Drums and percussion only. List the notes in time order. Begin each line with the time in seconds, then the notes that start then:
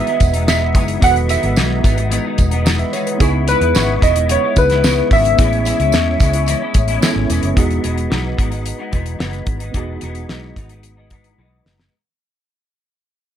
0.07 closed hi-hat
0.20 kick, closed hi-hat, tambourine
0.34 closed hi-hat
0.48 snare, tambourine
0.75 kick, closed hi-hat, tambourine
0.88 closed hi-hat
1.02 kick, closed hi-hat, tambourine
1.16 closed hi-hat
1.29 closed hi-hat, tambourine
1.43 closed hi-hat
1.56 snare, tambourine
1.84 kick, closed hi-hat, tambourine
1.98 closed hi-hat
2.12 closed hi-hat, tambourine
2.38 kick, closed hi-hat, tambourine
2.51 closed hi-hat
2.66 snare, tambourine
2.79 closed hi-hat
2.93 closed hi-hat, tambourine
3.07 closed hi-hat
3.20 kick, closed hi-hat, tambourine
3.48 closed hi-hat, tambourine
3.61 closed hi-hat
3.75 snare, tambourine
4.02 kick, closed hi-hat, tambourine
4.16 closed hi-hat
4.29 closed hi-hat
4.56 kick, closed hi-hat, tambourine
4.70 snare, closed hi-hat
4.84 snare, tambourine
5.11 kick, open hi-hat, tambourine
5.25 closed hi-hat
5.38 kick, closed hi-hat, tambourine
5.53 closed hi-hat
5.65 closed hi-hat, tambourine
5.80 closed hi-hat
5.92 snare, tambourine
6.20 kick, closed hi-hat, tambourine
6.33 closed hi-hat
6.46 closed hi-hat, tambourine
6.74 kick, closed hi-hat, tambourine
6.88 closed hi-hat
7.02 snare, tambourine
7.30 closed hi-hat, tambourine
7.43 closed hi-hat
7.57 kick, closed hi-hat
7.70 closed hi-hat
7.84 closed hi-hat
7.98 closed hi-hat
8.12 snare
8.39 kick, closed hi-hat
8.52 closed hi-hat
8.66 closed hi-hat
8.93 kick, closed hi-hat
9.06 closed hi-hat
9.20 snare
9.33 closed hi-hat
9.47 kick, closed hi-hat
9.60 closed hi-hat
9.74 kick, closed hi-hat
10.01 closed hi-hat
10.15 closed hi-hat
10.29 snare
10.56 kick, closed hi-hat
10.69 closed hi-hat
10.83 closed hi-hat
11.10 kick, closed hi-hat
11.24 closed hi-hat
11.66 snare
11.80 snare